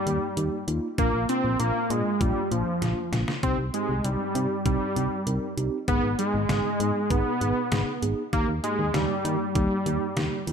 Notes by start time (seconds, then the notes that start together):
Already playing: G3
0.07 D#2 A#3 D#4 G4, closed hi-hat
0.37 D#2 A#3 D#4 G4, closed hi-hat
0.68 D#2 A#3 D#4 F4, closed hi-hat
0.98 A#1 A#3 D4 F4, kick, closed hi-hat
1.14 A#1
1.29 A#3 C4 D4 F4, closed hi-hat
1.44 A#1
1.60 A#1 A#3 D4 F4, closed hi-hat
1.90 A#2 G#3 A#3 D4 F4, closed hi-hat
2.21 A#1 G3 A#3 D4 F4, kick, closed hi-hat
2.51 A#1 F3 A#3 D4 F4, closed hi-hat
2.82 A#1 A#3 D4 F4, snare, closed hi-hat
3.13 A#1 A#3 D4 F4, snare, closed hi-hat
3.28 snare
3.43 C2 C4 D#4 G4, kick, closed hi-hat
3.58 C2
3.74 G#3 C4 D#4 G4, closed hi-hat
3.89 C2
4.04 C2 G3 C4 D#4 G4, closed hi-hat
4.35 C3 C4 D#4 G4, closed hi-hat
4.66 C2 G3 C4 D#4 G4, kick, closed hi-hat
4.96 C2 C4 D#4 G4, closed hi-hat
5.27 C2 C4 D#4 A#4, closed hi-hat
5.57 C2 C4 D#4 G4, closed hi-hat
5.88 G#1 B3 D#4 G#4, kick, closed hi-hat
6.03 G#1
6.19 G#3 B3 D#4 G#4, closed hi-hat
6.34 G#1
6.49 G#1 B3 D#4 G#4, snare, closed hi-hat
6.80 G#2 B3 D#4 G#4, closed hi-hat
7.10 G#1 B3 D#4 G#4, kick, closed hi-hat
7.41 G#1 B3 D#4 G#4, closed hi-hat
7.72 G#1 B3 D#4 G#4, snare, closed hi-hat
8.02 G#1 B3 D#4 G#4, closed hi-hat
8.33 D#2 A#3 D#4 G4, kick, closed hi-hat
8.48 D#2
8.64 G#3 A#3 D#4 G4, closed hi-hat
8.79 D#2
8.94 D#2 G3 A#3 D#4 G4, snare, closed hi-hat
9.25 D#3 A#3 D#4 G4, closed hi-hat
9.55 D#2 G3 A#3 D#4 G4, kick, closed hi-hat
9.86 D#2 A#3 D#4 G4, closed hi-hat
10.17 D#2 A#3 D#4 G4, snare, closed hi-hat
10.47 D#2 A#3 D#4 F4, closed hi-hat